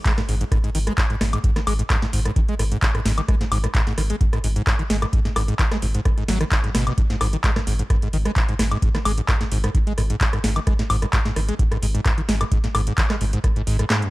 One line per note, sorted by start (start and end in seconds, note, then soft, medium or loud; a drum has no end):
0.05 0.12 G#3 medium
0.05 kick loud
0.05 clap loud
0.05 closed hi-hat medium
0.18 0.21 G#2 medium
0.18 cross-stick medium
0.18 snare soft
0.18 closed hi-hat soft
0.28 0.44 G#1 loud
0.28 0.35 G#2 medium
0.28 open hi-hat loud
0.41 0.44 G#2 medium
0.41 closed hi-hat medium
0.52 0.58 G#2 medium
0.52 kick loud
0.52 cross-stick medium
0.52 closed hi-hat medium
0.64 0.70 G#2 medium
0.64 closed hi-hat soft
0.75 0.90 G#1 medium
0.75 0.79 D#3 medium
0.75 open hi-hat loud
0.87 0.93 G#3 medium
0.87 cross-stick medium
0.87 closed hi-hat medium
0.98 1.02 G#2 medium
0.98 kick loud
0.98 clap loud
0.98 closed hi-hat medium
1.10 1.16 G#2 medium
1.10 closed hi-hat soft
1.21 1.36 G#1 medium
1.21 1.25 G#2 medium
1.21 cross-stick medium
1.21 snare medium
1.21 open hi-hat loud
1.33 1.39 G#2 medium
1.33 closed hi-hat medium
1.33 high woodblock medium
1.44 1.51 G#2 medium
1.44 kick loud
1.44 closed hi-hat medium
1.56 1.60 D#3 medium
1.56 cross-stick medium
1.56 snare soft
1.56 closed hi-hat soft
1.67 1.82 G#1 loud
1.67 1.74 G#3 medium
1.67 open hi-hat loud
1.67 high woodblock medium
1.79 1.83 G#2 medium
1.79 closed hi-hat medium
1.90 1.97 G#2 medium
1.90 kick loud
1.90 cross-stick medium
1.90 clap loud
1.90 closed hi-hat medium
2.02 2.06 G#2 medium
2.02 snare soft
2.02 closed hi-hat soft
2.13 2.28 G#1 loud
2.13 2.20 G#2 medium
2.13 open hi-hat loud
2.25 2.31 G#2 medium
2.25 cross-stick medium
2.25 closed hi-hat medium
2.36 2.40 D#3 medium
2.36 kick loud
2.36 closed hi-hat medium
2.49 2.54 G#3 medium
2.49 closed hi-hat soft
2.59 2.74 G#1 medium
2.59 2.63 G#2 medium
2.59 cross-stick medium
2.59 open hi-hat loud
2.71 2.77 G#2 medium
2.71 closed hi-hat medium
2.82 2.86 G#2 medium
2.82 kick loud
2.82 clap loud
2.82 closed hi-hat medium
2.94 3.01 G#2 medium
2.94 cross-stick medium
2.94 closed hi-hat soft
3.05 3.21 G#1 medium
3.05 3.12 G#2 medium
3.05 snare medium
3.05 open hi-hat loud
3.18 3.21 D#3 medium
3.18 closed hi-hat medium
3.18 high woodblock medium
3.28 3.35 G#3 medium
3.28 kick loud
3.28 cross-stick medium
3.28 closed hi-hat medium
3.41 3.44 G#2 medium
3.41 snare soft
3.41 closed hi-hat soft
3.51 3.67 G#1 loud
3.51 3.58 G#2 medium
3.51 open hi-hat loud
3.51 high woodblock medium
3.64 3.67 G#2 medium
3.64 cross-stick medium
3.64 closed hi-hat medium
3.75 3.81 G#2 medium
3.75 kick loud
3.75 clap loud
3.75 closed hi-hat medium
3.87 3.93 G#2 medium
3.87 snare soft
3.87 closed hi-hat soft
3.98 4.13 G#1 loud
3.98 4.02 D#3 medium
3.98 cross-stick medium
3.98 open hi-hat loud
4.10 4.16 G#3 medium
4.10 closed hi-hat medium
4.21 4.25 G#2 medium
4.21 kick loud
4.21 closed hi-hat medium
4.33 4.39 G#2 medium
4.33 cross-stick medium
4.33 closed hi-hat soft
4.44 4.59 G#1 medium
4.44 4.48 G#2 medium
4.44 open hi-hat loud
4.56 4.62 G#2 medium
4.56 closed hi-hat medium
4.67 4.74 G#2 medium
4.67 kick loud
4.67 cross-stick medium
4.67 clap loud
4.67 closed hi-hat medium
4.79 4.83 D#3 medium
4.79 closed hi-hat soft
4.90 5.05 G#1 medium
4.90 4.97 G#3 medium
4.90 snare medium
4.90 open hi-hat loud
5.02 5.06 G#2 medium
5.02 cross-stick medium
5.02 closed hi-hat medium
5.02 high woodblock medium
5.13 5.20 G#2 medium
5.13 kick loud
5.13 closed hi-hat medium
5.25 5.29 G#2 medium
5.25 snare soft
5.25 closed hi-hat soft
5.36 5.51 G#1 loud
5.36 5.43 G#2 medium
5.36 cross-stick medium
5.36 open hi-hat loud
5.36 high woodblock medium
5.48 5.54 G#2 medium
5.48 closed hi-hat soft
5.59 5.63 D#3 medium
5.59 kick loud
5.59 clap loud
5.59 closed hi-hat medium
5.71 5.77 G#3 medium
5.71 cross-stick medium
5.71 snare soft
5.71 closed hi-hat soft
5.82 5.98 G#1 loud
5.82 5.86 G#2 medium
5.82 open hi-hat loud
5.94 6.00 G#2 medium
5.94 closed hi-hat medium
6.05 6.09 G#2 medium
6.05 kick loud
6.05 cross-stick medium
6.05 closed hi-hat soft
6.18 6.24 G#2 medium
6.18 closed hi-hat soft
6.28 6.44 G#1 medium
6.28 6.39 F#3 medium
6.28 snare medium
6.28 open hi-hat loud
6.41 6.44 D#3 loud
6.41 cross-stick medium
6.41 closed hi-hat soft
6.51 6.56 D#3 medium
6.51 kick loud
6.51 clap loud
6.51 closed hi-hat medium
6.64 6.70 G#2 medium
6.64 closed hi-hat soft
6.75 6.90 G#1 loud
6.75 6.85 B2 medium
6.75 cross-stick medium
6.75 snare medium
6.75 open hi-hat loud
6.87 6.93 B2 medium
6.87 closed hi-hat medium
6.87 high woodblock medium
6.98 7.02 G#2 medium
6.98 kick loud
6.98 closed hi-hat medium
7.10 7.16 G#2 medium
7.10 snare soft
7.10 closed hi-hat soft
7.21 7.36 G#1 loud
7.21 7.27 G#2 medium
7.21 cross-stick medium
7.21 open hi-hat loud
7.21 high woodblock medium
7.33 7.37 D#3 medium
7.33 closed hi-hat medium
7.44 7.51 G#3 medium
7.44 kick loud
7.44 clap loud
7.44 closed hi-hat medium
7.56 7.60 G#2 medium
7.56 cross-stick medium
7.56 snare soft
7.56 closed hi-hat soft
7.67 7.82 G#1 loud
7.67 7.74 G#2 medium
7.67 open hi-hat loud
7.79 7.83 G#2 medium
7.79 closed hi-hat medium
7.90 7.97 G#2 medium
7.90 kick loud
7.90 cross-stick medium
7.90 closed hi-hat soft
8.02 8.08 G#2 medium
8.02 closed hi-hat soft
8.13 8.28 G#1 medium
8.13 8.17 D#3 medium
8.13 open hi-hat loud
8.25 8.31 G#3 medium
8.25 cross-stick medium
8.25 closed hi-hat medium
8.36 8.40 G#2 medium
8.36 kick loud
8.36 clap loud
8.36 closed hi-hat medium
8.49 8.54 G#2 medium
8.49 closed hi-hat soft
8.59 8.74 G#1 medium
8.59 8.63 G#2 medium
8.59 cross-stick medium
8.59 snare medium
8.59 open hi-hat loud
8.71 8.78 G#2 medium
8.71 closed hi-hat medium
8.71 high woodblock medium
8.82 8.89 G#2 medium
8.82 kick loud
8.82 closed hi-hat medium
8.95 8.98 D#3 medium
8.95 cross-stick medium
8.95 snare soft
8.95 closed hi-hat soft
9.05 9.21 G#1 loud
9.05 9.12 G#3 medium
9.05 open hi-hat loud
9.05 high woodblock medium
9.18 9.21 G#2 medium
9.18 closed hi-hat medium
9.28 9.35 G#2 medium
9.28 kick loud
9.28 cross-stick medium
9.28 clap loud
9.28 closed hi-hat medium
9.41 9.44 G#2 medium
9.41 snare soft
9.41 closed hi-hat soft
9.51 9.67 G#1 loud
9.51 9.58 G#2 medium
9.51 open hi-hat loud
9.64 9.70 G#2 medium
9.64 cross-stick medium
9.64 closed hi-hat medium
9.75 9.79 D#3 medium
9.75 kick loud
9.75 closed hi-hat medium
9.87 9.93 G#3 medium
9.87 closed hi-hat soft
9.98 10.13 G#1 medium
9.98 10.02 G#2 medium
9.98 cross-stick medium
9.98 open hi-hat loud
10.10 10.16 G#2 medium
10.10 closed hi-hat medium
10.21 10.25 G#2 medium
10.21 kick loud
10.21 clap loud
10.21 closed hi-hat medium
10.33 10.39 G#2 medium
10.33 cross-stick medium
10.33 closed hi-hat soft
10.44 10.59 G#1 loud
10.44 10.51 G#2 medium
10.44 snare medium
10.44 open hi-hat loud
10.56 10.60 D#3 medium
10.56 closed hi-hat medium
10.56 high woodblock medium
10.67 10.74 G#3 medium
10.67 kick loud
10.67 cross-stick medium
10.67 closed hi-hat medium
10.79 10.83 G#2 medium
10.79 snare soft
10.79 closed hi-hat soft
10.90 11.05 G#1 loud
10.90 10.97 G#2 medium
10.90 open hi-hat loud
10.90 high woodblock medium
11.02 11.06 G#2 medium
11.02 cross-stick medium
11.02 closed hi-hat medium
11.13 11.20 G#2 medium
11.13 kick loud
11.13 clap loud
11.13 closed hi-hat medium
11.25 11.31 G#2 medium
11.25 snare soft
11.25 closed hi-hat soft
11.36 11.51 G#1 loud
11.36 11.40 D#3 medium
11.36 cross-stick medium
11.36 open hi-hat loud
11.48 11.54 G#3 medium
11.48 closed hi-hat medium
11.59 11.63 G#2 medium
11.59 kick loud
11.59 closed hi-hat medium
11.71 11.77 G#2 medium
11.71 cross-stick medium
11.71 closed hi-hat soft
11.82 11.98 G#1 medium
11.82 11.86 G#2 medium
11.82 open hi-hat loud
11.95 12.01 G#2 medium
11.95 closed hi-hat medium
12.05 12.12 G#2 medium
12.05 kick loud
12.05 cross-stick medium
12.05 clap loud
12.05 closed hi-hat medium
12.18 12.21 D#3 medium
12.18 closed hi-hat soft
12.28 12.44 G#1 loud
12.28 12.35 G#3 medium
12.28 snare medium
12.28 open hi-hat loud
12.41 12.44 G#2 medium
12.41 cross-stick medium
12.41 closed hi-hat medium
12.41 high woodblock medium
12.52 12.58 G#2 medium
12.52 kick loud
12.52 closed hi-hat medium
12.64 12.67 G#2 medium
12.64 snare soft
12.64 closed hi-hat soft
12.75 12.90 G#1 loud
12.75 12.81 G#2 medium
12.75 cross-stick medium
12.75 open hi-hat loud
12.75 high woodblock medium
12.87 12.93 G#2 medium
12.87 closed hi-hat medium
12.98 13.02 D#3 medium
12.98 kick loud
12.98 clap loud
12.98 closed hi-hat medium
13.10 13.16 G#3 medium
13.10 cross-stick medium
13.10 snare soft
13.10 clap soft
13.10 closed hi-hat soft
13.21 13.36 G#1 loud
13.21 13.25 G#2 medium
13.21 open hi-hat loud
13.33 13.39 G#2 medium
13.33 closed hi-hat medium
13.44 13.48 G#2 medium
13.44 kick loud
13.44 cross-stick medium
13.44 closed hi-hat medium
13.56 13.62 G#2 medium
13.56 closed hi-hat soft
13.67 13.82 G#1 medium
13.67 13.77 G#2 medium
13.67 open hi-hat loud
13.79 13.85 G#2 medium
13.79 cross-stick medium
13.79 closed hi-hat medium
13.90 14.04 G#2 loud
13.90 snare medium
13.90 clap loud
13.90 closed hi-hat medium
14.02 14.08 F#2 medium
14.02 closed hi-hat soft